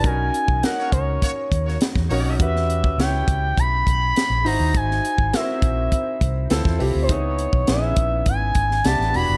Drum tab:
HH |x-x-x-x-x-x-x-o-|x-x-x-x-x-x-x-o-|x-x-x-x-x-x-x-o-|x-x-x-x-x-x-x-o-|
SD |----o------ooo--|-o--o-------o---|-o--o-------oo--|----o------ooo--|
BD |o--o--o-o-o--o--|o--o--o-o-o-----|o--o--o-o-o--o--|o--o--o-o-o-----|